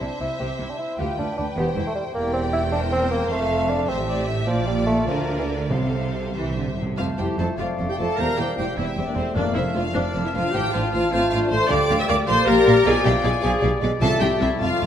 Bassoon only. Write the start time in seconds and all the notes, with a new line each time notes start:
0.01 D4
0.20 E4
0.39 C4
0.70 D4
0.79 E4
0.99 F4
1.19 D4
1.38 D4
1.57 B3
1.87 A3
1.95 G3
2.15 A#3
2.34 C4
2.53 E4
2.72 D4
2.92 C4
3.11 A#3
3.31 A3
3.69 D4
3.89 C4
4.47 F3
4.67 G3
4.86 A3
5.08 F3
5.39 E3
5.49 D3
5.70 C3
6.98 A3
8.19 G3
8.78 G3
9.36 A3
9.95 F3
11.13 A3
11.71 G3
12.85 F3
13.43 F3
13.62 G3
13.81 G#3
14.01 A3